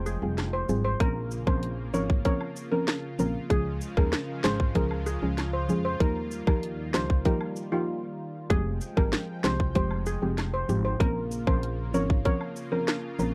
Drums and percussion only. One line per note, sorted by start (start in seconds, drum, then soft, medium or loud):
0.06 cabasa medium
0.38 snare medium
0.38 closed hi-hat medium
0.38 high woodblock medium
0.69 cabasa medium
1.00 kick loud
1.00 closed hi-hat medium
1.31 cabasa medium
1.47 kick loud
1.47 high woodblock medium
1.63 closed hi-hat medium
1.94 cabasa medium
2.10 kick medium
2.25 kick medium
2.25 closed hi-hat medium
2.41 high woodblock medium
2.56 cabasa medium
2.88 snare loud
2.88 closed hi-hat medium
2.88 high woodblock medium
3.19 cabasa medium
3.50 kick loud
3.50 closed hi-hat medium
3.81 cabasa medium
3.97 kick loud
3.97 high woodblock medium
4.13 snare loud
4.13 closed hi-hat medium
4.44 snare loud
4.44 cabasa medium
4.44 high woodblock medium
4.60 kick loud
4.75 kick medium
4.75 closed hi-hat medium
4.91 high woodblock medium
5.06 cabasa medium
5.38 snare medium
5.38 closed hi-hat medium
5.38 high woodblock medium
5.69 cabasa medium
6.00 kick loud
6.00 closed hi-hat medium
6.31 cabasa medium
6.47 kick loud
6.47 high woodblock medium
6.63 closed hi-hat medium
6.94 snare loud
6.94 cabasa medium
6.94 high woodblock medium
7.10 kick loud
7.25 kick medium
7.25 closed hi-hat medium
7.41 high woodblock medium
7.56 cabasa medium
8.50 kick loud
8.50 closed hi-hat medium
8.81 cabasa medium
8.97 kick loud
8.97 high woodblock medium
9.13 snare loud
9.13 closed hi-hat medium
9.44 snare loud
9.44 cabasa medium
9.44 high woodblock medium
9.60 kick loud
9.75 kick medium
9.75 closed hi-hat medium
9.91 high woodblock medium
10.06 cabasa medium
10.38 snare medium
10.38 closed hi-hat medium
10.38 high woodblock medium
10.69 cabasa medium
11.00 kick loud
11.00 closed hi-hat medium
11.31 cabasa medium
11.47 kick loud
11.47 high woodblock medium
11.63 closed hi-hat medium
11.94 cabasa medium
12.10 kick loud
12.25 kick medium
12.25 closed hi-hat medium
12.41 high woodblock medium
12.56 cabasa medium
12.88 snare loud
12.88 closed hi-hat medium
12.88 high woodblock medium
13.19 cabasa medium